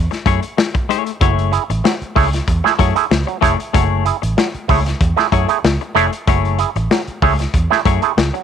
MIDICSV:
0, 0, Header, 1, 7, 480
1, 0, Start_track
1, 0, Key_signature, 3, "minor"
1, 0, Tempo, 632911
1, 918, Time_signature, 4, 2, 24, 8
1, 6396, End_track
2, 0, Start_track
2, 0, Title_t, "Clean electric guitar"
2, 0, Program_c, 0, 27
2, 195, Note_on_c, 0, 57, 104
2, 201, Note_on_c, 0, 64, 93
2, 206, Note_on_c, 0, 68, 108
2, 207, Note_on_c, 0, 73, 118
2, 312, Note_off_c, 0, 73, 0
2, 316, Note_off_c, 0, 68, 0
2, 321, Note_off_c, 0, 57, 0
2, 321, Note_off_c, 0, 64, 0
2, 676, Note_on_c, 0, 57, 96
2, 682, Note_on_c, 0, 64, 78
2, 684, Note_on_c, 0, 68, 91
2, 686, Note_on_c, 0, 73, 96
2, 796, Note_off_c, 0, 73, 0
2, 801, Note_off_c, 0, 68, 0
2, 804, Note_off_c, 0, 64, 0
2, 835, Note_off_c, 0, 57, 0
2, 916, Note_on_c, 0, 57, 84
2, 922, Note_on_c, 0, 64, 87
2, 927, Note_on_c, 0, 68, 82
2, 929, Note_on_c, 0, 73, 97
2, 1139, Note_off_c, 0, 57, 0
2, 1142, Note_off_c, 0, 64, 0
2, 1145, Note_off_c, 0, 68, 0
2, 1146, Note_off_c, 0, 73, 0
2, 1635, Note_on_c, 0, 57, 70
2, 1640, Note_on_c, 0, 64, 77
2, 1646, Note_on_c, 0, 68, 85
2, 1651, Note_on_c, 0, 73, 80
2, 1734, Note_off_c, 0, 57, 0
2, 1736, Note_off_c, 0, 64, 0
2, 1739, Note_off_c, 0, 68, 0
2, 1742, Note_off_c, 0, 73, 0
2, 2113, Note_on_c, 0, 57, 107
2, 2119, Note_on_c, 0, 64, 102
2, 2122, Note_on_c, 0, 68, 95
2, 2126, Note_on_c, 0, 73, 107
2, 2235, Note_off_c, 0, 73, 0
2, 2238, Note_off_c, 0, 68, 0
2, 2240, Note_off_c, 0, 57, 0
2, 2243, Note_off_c, 0, 64, 0
2, 2587, Note_on_c, 0, 57, 101
2, 2592, Note_on_c, 0, 64, 106
2, 2595, Note_on_c, 0, 68, 92
2, 2600, Note_on_c, 0, 73, 105
2, 2710, Note_off_c, 0, 73, 0
2, 2717, Note_off_c, 0, 57, 0
2, 2718, Note_off_c, 0, 68, 0
2, 2719, Note_off_c, 0, 64, 0
2, 2832, Note_on_c, 0, 57, 91
2, 2836, Note_on_c, 0, 64, 90
2, 2842, Note_on_c, 0, 68, 96
2, 2845, Note_on_c, 0, 73, 99
2, 3057, Note_off_c, 0, 57, 0
2, 3059, Note_off_c, 0, 64, 0
2, 3062, Note_off_c, 0, 68, 0
2, 3064, Note_off_c, 0, 73, 0
2, 3559, Note_on_c, 0, 57, 73
2, 3565, Note_on_c, 0, 64, 66
2, 3565, Note_on_c, 0, 68, 68
2, 3572, Note_on_c, 0, 73, 81
2, 3656, Note_off_c, 0, 57, 0
2, 3659, Note_off_c, 0, 64, 0
2, 3659, Note_off_c, 0, 68, 0
2, 3662, Note_off_c, 0, 73, 0
2, 4036, Note_on_c, 0, 57, 89
2, 4040, Note_on_c, 0, 64, 98
2, 4044, Note_on_c, 0, 68, 96
2, 4046, Note_on_c, 0, 73, 107
2, 4156, Note_off_c, 0, 73, 0
2, 4161, Note_off_c, 0, 57, 0
2, 4162, Note_off_c, 0, 68, 0
2, 4163, Note_off_c, 0, 64, 0
2, 4515, Note_on_c, 0, 57, 98
2, 4521, Note_on_c, 0, 64, 93
2, 4522, Note_on_c, 0, 68, 111
2, 4528, Note_on_c, 0, 73, 98
2, 4639, Note_off_c, 0, 73, 0
2, 4641, Note_off_c, 0, 57, 0
2, 4644, Note_off_c, 0, 64, 0
2, 4644, Note_off_c, 0, 68, 0
2, 4759, Note_on_c, 0, 57, 79
2, 4764, Note_on_c, 0, 64, 91
2, 4768, Note_on_c, 0, 68, 95
2, 4771, Note_on_c, 0, 73, 98
2, 4980, Note_off_c, 0, 57, 0
2, 4983, Note_off_c, 0, 64, 0
2, 4985, Note_off_c, 0, 68, 0
2, 4986, Note_off_c, 0, 73, 0
2, 5481, Note_on_c, 0, 57, 62
2, 5486, Note_on_c, 0, 64, 69
2, 5487, Note_on_c, 0, 68, 82
2, 5491, Note_on_c, 0, 73, 75
2, 5577, Note_off_c, 0, 57, 0
2, 5580, Note_off_c, 0, 64, 0
2, 5580, Note_off_c, 0, 68, 0
2, 5582, Note_off_c, 0, 73, 0
2, 5957, Note_on_c, 0, 57, 98
2, 5961, Note_on_c, 0, 64, 94
2, 5964, Note_on_c, 0, 68, 99
2, 5967, Note_on_c, 0, 73, 102
2, 6075, Note_off_c, 0, 73, 0
2, 6082, Note_off_c, 0, 57, 0
2, 6084, Note_off_c, 0, 64, 0
2, 6086, Note_off_c, 0, 68, 0
2, 6396, End_track
3, 0, Start_track
3, 0, Title_t, "Clav"
3, 0, Program_c, 1, 7
3, 916, Note_on_c, 1, 54, 57
3, 999, Note_off_c, 1, 54, 0
3, 1150, Note_on_c, 1, 64, 75
3, 1155, Note_on_c, 1, 68, 81
3, 1236, Note_off_c, 1, 64, 0
3, 1239, Note_off_c, 1, 68, 0
3, 1396, Note_on_c, 1, 54, 62
3, 1479, Note_off_c, 1, 54, 0
3, 1635, Note_on_c, 1, 57, 75
3, 1638, Note_on_c, 1, 64, 68
3, 1639, Note_on_c, 1, 68, 79
3, 1719, Note_off_c, 1, 57, 0
3, 1720, Note_off_c, 1, 64, 0
3, 1721, Note_off_c, 1, 68, 0
3, 1766, Note_on_c, 1, 68, 44
3, 1768, Note_on_c, 1, 64, 38
3, 1811, Note_off_c, 1, 68, 0
3, 1812, Note_off_c, 1, 64, 0
3, 2002, Note_on_c, 1, 57, 85
3, 2003, Note_on_c, 1, 64, 70
3, 2006, Note_on_c, 1, 68, 87
3, 2077, Note_off_c, 1, 57, 0
3, 2077, Note_off_c, 1, 64, 0
3, 2078, Note_off_c, 1, 68, 0
3, 2115, Note_on_c, 1, 54, 57
3, 2199, Note_off_c, 1, 54, 0
3, 2240, Note_on_c, 1, 57, 72
3, 2243, Note_on_c, 1, 64, 69
3, 2245, Note_on_c, 1, 68, 82
3, 2315, Note_off_c, 1, 57, 0
3, 2317, Note_off_c, 1, 64, 0
3, 2318, Note_off_c, 1, 68, 0
3, 2356, Note_on_c, 1, 68, 54
3, 2357, Note_on_c, 1, 64, 49
3, 2408, Note_off_c, 1, 64, 0
3, 2408, Note_off_c, 1, 68, 0
3, 2478, Note_on_c, 1, 54, 61
3, 2555, Note_off_c, 1, 54, 0
3, 2592, Note_on_c, 1, 57, 73
3, 2594, Note_on_c, 1, 64, 72
3, 2596, Note_on_c, 1, 68, 88
3, 2677, Note_off_c, 1, 57, 0
3, 2678, Note_off_c, 1, 64, 0
3, 2679, Note_off_c, 1, 68, 0
3, 2834, Note_on_c, 1, 54, 59
3, 2918, Note_off_c, 1, 54, 0
3, 3072, Note_on_c, 1, 64, 77
3, 3076, Note_on_c, 1, 68, 83
3, 3157, Note_off_c, 1, 64, 0
3, 3159, Note_off_c, 1, 68, 0
3, 3315, Note_on_c, 1, 54, 61
3, 3399, Note_off_c, 1, 54, 0
3, 3552, Note_on_c, 1, 57, 73
3, 3555, Note_on_c, 1, 64, 80
3, 3558, Note_on_c, 1, 68, 77
3, 3637, Note_off_c, 1, 57, 0
3, 3639, Note_off_c, 1, 64, 0
3, 3640, Note_off_c, 1, 68, 0
3, 3682, Note_on_c, 1, 64, 39
3, 3682, Note_on_c, 1, 68, 40
3, 3729, Note_off_c, 1, 64, 0
3, 3729, Note_off_c, 1, 68, 0
3, 3917, Note_on_c, 1, 57, 84
3, 3921, Note_on_c, 1, 64, 70
3, 3923, Note_on_c, 1, 68, 92
3, 3994, Note_off_c, 1, 57, 0
3, 3996, Note_off_c, 1, 64, 0
3, 3997, Note_off_c, 1, 68, 0
3, 4034, Note_on_c, 1, 54, 60
3, 4118, Note_off_c, 1, 54, 0
3, 4159, Note_on_c, 1, 57, 79
3, 4160, Note_on_c, 1, 64, 66
3, 4163, Note_on_c, 1, 68, 84
3, 4235, Note_off_c, 1, 57, 0
3, 4236, Note_off_c, 1, 64, 0
3, 4237, Note_off_c, 1, 68, 0
3, 4510, Note_on_c, 1, 57, 102
3, 4513, Note_on_c, 1, 64, 85
3, 4516, Note_on_c, 1, 68, 103
3, 4596, Note_off_c, 1, 57, 0
3, 4598, Note_off_c, 1, 64, 0
3, 4599, Note_off_c, 1, 68, 0
3, 4758, Note_on_c, 1, 54, 57
3, 4840, Note_off_c, 1, 54, 0
3, 4993, Note_on_c, 1, 64, 75
3, 4998, Note_on_c, 1, 68, 83
3, 5078, Note_off_c, 1, 64, 0
3, 5080, Note_off_c, 1, 68, 0
3, 5238, Note_on_c, 1, 54, 65
3, 5320, Note_off_c, 1, 54, 0
3, 5476, Note_on_c, 1, 57, 79
3, 5479, Note_on_c, 1, 64, 70
3, 5480, Note_on_c, 1, 68, 85
3, 5560, Note_off_c, 1, 57, 0
3, 5561, Note_off_c, 1, 64, 0
3, 5561, Note_off_c, 1, 68, 0
3, 5606, Note_on_c, 1, 68, 45
3, 5607, Note_on_c, 1, 64, 42
3, 5651, Note_off_c, 1, 64, 0
3, 5651, Note_off_c, 1, 68, 0
3, 5843, Note_on_c, 1, 57, 91
3, 5844, Note_on_c, 1, 64, 77
3, 5847, Note_on_c, 1, 68, 86
3, 5917, Note_off_c, 1, 57, 0
3, 5918, Note_off_c, 1, 64, 0
3, 5919, Note_off_c, 1, 68, 0
3, 5958, Note_on_c, 1, 54, 58
3, 6041, Note_off_c, 1, 54, 0
3, 6084, Note_on_c, 1, 57, 77
3, 6086, Note_on_c, 1, 64, 73
3, 6088, Note_on_c, 1, 68, 76
3, 6158, Note_off_c, 1, 57, 0
3, 6159, Note_off_c, 1, 64, 0
3, 6160, Note_off_c, 1, 68, 0
3, 6199, Note_on_c, 1, 68, 50
3, 6200, Note_on_c, 1, 64, 44
3, 6250, Note_off_c, 1, 64, 0
3, 6250, Note_off_c, 1, 68, 0
3, 6320, Note_on_c, 1, 54, 58
3, 6396, Note_off_c, 1, 54, 0
3, 6396, End_track
4, 0, Start_track
4, 0, Title_t, "Fingered electric bass"
4, 0, Program_c, 2, 33
4, 196, Note_on_c, 2, 42, 107
4, 289, Note_off_c, 2, 42, 0
4, 920, Note_on_c, 2, 30, 127
4, 1186, Note_off_c, 2, 30, 0
4, 1287, Note_on_c, 2, 33, 92
4, 1368, Note_off_c, 2, 33, 0
4, 1641, Note_on_c, 2, 37, 93
4, 1814, Note_off_c, 2, 37, 0
4, 1877, Note_on_c, 2, 40, 105
4, 1969, Note_off_c, 2, 40, 0
4, 2118, Note_on_c, 2, 42, 103
4, 2210, Note_off_c, 2, 42, 0
4, 2359, Note_on_c, 2, 37, 108
4, 2451, Note_off_c, 2, 37, 0
4, 2597, Note_on_c, 2, 29, 72
4, 2690, Note_off_c, 2, 29, 0
4, 2840, Note_on_c, 2, 30, 120
4, 3106, Note_off_c, 2, 30, 0
4, 3208, Note_on_c, 2, 33, 97
4, 3288, Note_off_c, 2, 33, 0
4, 3558, Note_on_c, 2, 37, 96
4, 3732, Note_off_c, 2, 37, 0
4, 3797, Note_on_c, 2, 40, 106
4, 3890, Note_off_c, 2, 40, 0
4, 4036, Note_on_c, 2, 42, 99
4, 4129, Note_off_c, 2, 42, 0
4, 4279, Note_on_c, 2, 37, 110
4, 4371, Note_off_c, 2, 37, 0
4, 4514, Note_on_c, 2, 29, 81
4, 4608, Note_off_c, 2, 29, 0
4, 4759, Note_on_c, 2, 30, 121
4, 5025, Note_off_c, 2, 30, 0
4, 5124, Note_on_c, 2, 33, 100
4, 5206, Note_off_c, 2, 33, 0
4, 5477, Note_on_c, 2, 37, 94
4, 5651, Note_off_c, 2, 37, 0
4, 5719, Note_on_c, 2, 40, 106
4, 5811, Note_off_c, 2, 40, 0
4, 5957, Note_on_c, 2, 42, 98
4, 6050, Note_off_c, 2, 42, 0
4, 6200, Note_on_c, 2, 37, 116
4, 6291, Note_off_c, 2, 37, 0
4, 6396, End_track
5, 0, Start_track
5, 0, Title_t, "Muted clean electric guitar strokes"
5, 84, Note_on_c, 9, 29, 47
5, 159, Note_off_c, 9, 29, 0
5, 321, Note_on_c, 9, 29, 55
5, 397, Note_off_c, 9, 29, 0
5, 436, Note_on_c, 9, 29, 51
5, 512, Note_off_c, 9, 29, 0
5, 563, Note_on_c, 9, 29, 50
5, 639, Note_off_c, 9, 29, 0
5, 805, Note_on_c, 9, 29, 42
5, 881, Note_off_c, 9, 29, 0
5, 1290, Note_on_c, 9, 29, 58
5, 1366, Note_off_c, 9, 29, 0
5, 1398, Note_on_c, 9, 29, 46
5, 1473, Note_off_c, 9, 29, 0
5, 1764, Note_on_c, 9, 29, 50
5, 1840, Note_off_c, 9, 29, 0
5, 2004, Note_on_c, 9, 29, 41
5, 2079, Note_off_c, 9, 29, 0
5, 2244, Note_on_c, 9, 29, 49
5, 2320, Note_off_c, 9, 29, 0
5, 2356, Note_on_c, 9, 29, 45
5, 2432, Note_off_c, 9, 29, 0
5, 2482, Note_on_c, 9, 29, 52
5, 2558, Note_off_c, 9, 29, 0
5, 2719, Note_on_c, 9, 29, 48
5, 2795, Note_off_c, 9, 29, 0
5, 3201, Note_on_c, 9, 29, 47
5, 3277, Note_off_c, 9, 29, 0
5, 3322, Note_on_c, 9, 29, 41
5, 3398, Note_off_c, 9, 29, 0
5, 3689, Note_on_c, 9, 29, 48
5, 3765, Note_off_c, 9, 29, 0
5, 3923, Note_on_c, 9, 29, 52
5, 3999, Note_off_c, 9, 29, 0
5, 4165, Note_on_c, 9, 29, 50
5, 4241, Note_off_c, 9, 29, 0
5, 4283, Note_on_c, 9, 29, 43
5, 4358, Note_off_c, 9, 29, 0
5, 4408, Note_on_c, 9, 29, 49
5, 4483, Note_off_c, 9, 29, 0
5, 4648, Note_on_c, 9, 29, 39
5, 4724, Note_off_c, 9, 29, 0
5, 5129, Note_on_c, 9, 29, 56
5, 5205, Note_off_c, 9, 29, 0
5, 5242, Note_on_c, 9, 29, 43
5, 5317, Note_off_c, 9, 29, 0
5, 5612, Note_on_c, 9, 29, 54
5, 5688, Note_off_c, 9, 29, 0
5, 5851, Note_on_c, 9, 29, 49
5, 5927, Note_off_c, 9, 29, 0
5, 6085, Note_on_c, 9, 29, 45
5, 6160, Note_off_c, 9, 29, 0
5, 6198, Note_on_c, 9, 29, 44
5, 6274, Note_off_c, 9, 29, 0
5, 6326, Note_on_c, 9, 29, 42
5, 6396, Note_off_c, 9, 29, 0
5, 6396, End_track
6, 0, Start_track
6, 0, Title_t, "Muted fingered electric bass strokes"
6, 1529, Note_on_c, 9, 29, 42
6, 1604, Note_off_c, 9, 29, 0
6, 3447, Note_on_c, 9, 29, 45
6, 3523, Note_off_c, 9, 29, 0
6, 5368, Note_on_c, 9, 29, 45
6, 5444, Note_off_c, 9, 29, 0
6, 6396, End_track
7, 0, Start_track
7, 0, Title_t, "Drums"
7, 83, Note_on_c, 9, 42, 33
7, 94, Note_on_c, 9, 38, 36
7, 159, Note_off_c, 9, 42, 0
7, 170, Note_off_c, 9, 38, 0
7, 197, Note_on_c, 9, 36, 91
7, 199, Note_on_c, 9, 42, 75
7, 272, Note_off_c, 9, 36, 0
7, 274, Note_off_c, 9, 42, 0
7, 323, Note_on_c, 9, 42, 52
7, 399, Note_off_c, 9, 42, 0
7, 442, Note_on_c, 9, 38, 115
7, 518, Note_off_c, 9, 38, 0
7, 567, Note_on_c, 9, 36, 92
7, 569, Note_on_c, 9, 42, 36
7, 643, Note_off_c, 9, 36, 0
7, 645, Note_off_c, 9, 42, 0
7, 685, Note_on_c, 9, 42, 84
7, 761, Note_off_c, 9, 42, 0
7, 807, Note_on_c, 9, 42, 58
7, 883, Note_off_c, 9, 42, 0
7, 919, Note_on_c, 9, 36, 127
7, 919, Note_on_c, 9, 42, 80
7, 995, Note_off_c, 9, 36, 0
7, 995, Note_off_c, 9, 42, 0
7, 1052, Note_on_c, 9, 42, 37
7, 1128, Note_off_c, 9, 42, 0
7, 1158, Note_on_c, 9, 42, 77
7, 1234, Note_off_c, 9, 42, 0
7, 1291, Note_on_c, 9, 42, 60
7, 1367, Note_off_c, 9, 42, 0
7, 1405, Note_on_c, 9, 38, 116
7, 1481, Note_off_c, 9, 38, 0
7, 1530, Note_on_c, 9, 42, 37
7, 1606, Note_off_c, 9, 42, 0
7, 1639, Note_on_c, 9, 36, 92
7, 1644, Note_on_c, 9, 46, 78
7, 1715, Note_off_c, 9, 36, 0
7, 1719, Note_off_c, 9, 46, 0
7, 1768, Note_on_c, 9, 42, 64
7, 1778, Note_on_c, 9, 38, 35
7, 1844, Note_off_c, 9, 42, 0
7, 1854, Note_off_c, 9, 38, 0
7, 1879, Note_on_c, 9, 36, 101
7, 1882, Note_on_c, 9, 42, 74
7, 1954, Note_off_c, 9, 36, 0
7, 1957, Note_off_c, 9, 42, 0
7, 2016, Note_on_c, 9, 38, 36
7, 2092, Note_off_c, 9, 38, 0
7, 2117, Note_on_c, 9, 36, 90
7, 2119, Note_on_c, 9, 42, 74
7, 2193, Note_off_c, 9, 36, 0
7, 2195, Note_off_c, 9, 42, 0
7, 2245, Note_on_c, 9, 42, 51
7, 2321, Note_off_c, 9, 42, 0
7, 2362, Note_on_c, 9, 38, 124
7, 2438, Note_off_c, 9, 38, 0
7, 2489, Note_on_c, 9, 42, 32
7, 2565, Note_off_c, 9, 42, 0
7, 2597, Note_on_c, 9, 36, 90
7, 2606, Note_on_c, 9, 42, 95
7, 2673, Note_off_c, 9, 36, 0
7, 2682, Note_off_c, 9, 42, 0
7, 2729, Note_on_c, 9, 42, 54
7, 2805, Note_off_c, 9, 42, 0
7, 2840, Note_on_c, 9, 36, 126
7, 2840, Note_on_c, 9, 42, 87
7, 2916, Note_off_c, 9, 36, 0
7, 2916, Note_off_c, 9, 42, 0
7, 3076, Note_on_c, 9, 42, 69
7, 3152, Note_off_c, 9, 42, 0
7, 3208, Note_on_c, 9, 42, 58
7, 3284, Note_off_c, 9, 42, 0
7, 3321, Note_on_c, 9, 38, 107
7, 3397, Note_off_c, 9, 38, 0
7, 3444, Note_on_c, 9, 42, 34
7, 3520, Note_off_c, 9, 42, 0
7, 3558, Note_on_c, 9, 36, 98
7, 3560, Note_on_c, 9, 46, 80
7, 3634, Note_off_c, 9, 36, 0
7, 3636, Note_off_c, 9, 46, 0
7, 3686, Note_on_c, 9, 42, 60
7, 3695, Note_on_c, 9, 38, 35
7, 3761, Note_off_c, 9, 42, 0
7, 3771, Note_off_c, 9, 38, 0
7, 3797, Note_on_c, 9, 36, 108
7, 3798, Note_on_c, 9, 42, 75
7, 3873, Note_off_c, 9, 36, 0
7, 3874, Note_off_c, 9, 42, 0
7, 3923, Note_on_c, 9, 42, 31
7, 3934, Note_on_c, 9, 38, 33
7, 3999, Note_off_c, 9, 42, 0
7, 4010, Note_off_c, 9, 38, 0
7, 4037, Note_on_c, 9, 36, 84
7, 4038, Note_on_c, 9, 42, 71
7, 4113, Note_off_c, 9, 36, 0
7, 4113, Note_off_c, 9, 42, 0
7, 4162, Note_on_c, 9, 42, 53
7, 4238, Note_off_c, 9, 42, 0
7, 4281, Note_on_c, 9, 38, 124
7, 4357, Note_off_c, 9, 38, 0
7, 4408, Note_on_c, 9, 42, 32
7, 4484, Note_off_c, 9, 42, 0
7, 4524, Note_on_c, 9, 42, 93
7, 4600, Note_off_c, 9, 42, 0
7, 4646, Note_on_c, 9, 42, 60
7, 4722, Note_off_c, 9, 42, 0
7, 4758, Note_on_c, 9, 42, 83
7, 4759, Note_on_c, 9, 36, 115
7, 4834, Note_off_c, 9, 42, 0
7, 4835, Note_off_c, 9, 36, 0
7, 4892, Note_on_c, 9, 42, 37
7, 4968, Note_off_c, 9, 42, 0
7, 4995, Note_on_c, 9, 42, 77
7, 5071, Note_off_c, 9, 42, 0
7, 5125, Note_on_c, 9, 42, 54
7, 5201, Note_off_c, 9, 42, 0
7, 5242, Note_on_c, 9, 38, 115
7, 5317, Note_off_c, 9, 38, 0
7, 5365, Note_on_c, 9, 42, 35
7, 5441, Note_off_c, 9, 42, 0
7, 5478, Note_on_c, 9, 36, 98
7, 5480, Note_on_c, 9, 46, 70
7, 5554, Note_off_c, 9, 36, 0
7, 5556, Note_off_c, 9, 46, 0
7, 5604, Note_on_c, 9, 42, 65
7, 5613, Note_on_c, 9, 38, 34
7, 5680, Note_off_c, 9, 42, 0
7, 5689, Note_off_c, 9, 38, 0
7, 5717, Note_on_c, 9, 36, 102
7, 5718, Note_on_c, 9, 42, 78
7, 5793, Note_off_c, 9, 36, 0
7, 5794, Note_off_c, 9, 42, 0
7, 5853, Note_on_c, 9, 38, 33
7, 5929, Note_off_c, 9, 38, 0
7, 5957, Note_on_c, 9, 36, 95
7, 5960, Note_on_c, 9, 42, 76
7, 6033, Note_off_c, 9, 36, 0
7, 6036, Note_off_c, 9, 42, 0
7, 6083, Note_on_c, 9, 42, 47
7, 6159, Note_off_c, 9, 42, 0
7, 6203, Note_on_c, 9, 38, 119
7, 6279, Note_off_c, 9, 38, 0
7, 6329, Note_on_c, 9, 42, 34
7, 6396, Note_off_c, 9, 42, 0
7, 6396, End_track
0, 0, End_of_file